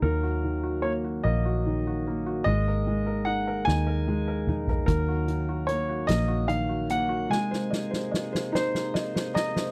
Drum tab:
HH |------------|------------|x-x-x-x-x-x-|------------|
SD |------------|------o-----|------o-----|oooooooooooo|
T2 |------------|----------o-|------------|------------|
FT |------------|-----------o|------------|------------|
BD |------------|------------|o-----------|------------|